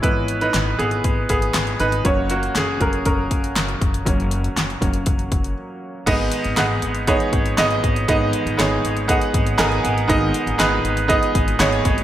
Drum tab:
CC |----------------|----------------|----------------|x---------------|
HH |x-xxx-xxx-xxxxxx|x-xxx-xxx-xxxxxx|xxxxxxxxxxxx----|x-xxx-xxxxxxxxxx|
CP |----x-------x---|----x-------x---|----x-----------|----x-------x---|
SD |----o-------o---|----o-------o---|----o-----------|----o-------o---|
BD |o-------o-o-----|o-----o-o-o---o-|o-----o-o-o-----|o-------o-o---o-|

CC |----------------|----------------|
HH |x-xxx-xxxxxxxxxx|x-xxx-xxxxxxxxxx|
CP |----x-------x---|----x-------x---|
SD |----o-------o---|----o-------o---|
BD |o-------o-o-----|o-------o-o---o-|